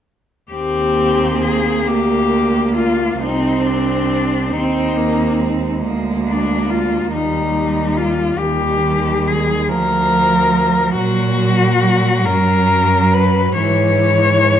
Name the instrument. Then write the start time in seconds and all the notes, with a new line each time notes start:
cello
0.51 D#2 A#3 C4 G4
1.44 G#4
1.86 D2 A#3 G4
2.77 F4
3.21 C2 C4 D#4
3.66 D4
4.52 D#2 C4 D#4
4.96 A#3
5.39 G#3
5.82 D2 A#3
6.27 D4
6.70 F4
7.11 D#2 G3 D#4
7.97 F4
8.38 D#2 D#3 G3 G4
9.27 G#4
9.69 D2 F3 A#4
10.96 A#2 F#3 F#4
12.26 F#2 F#3 A#4
13.13 B4
13.56 G#2 E3 C#5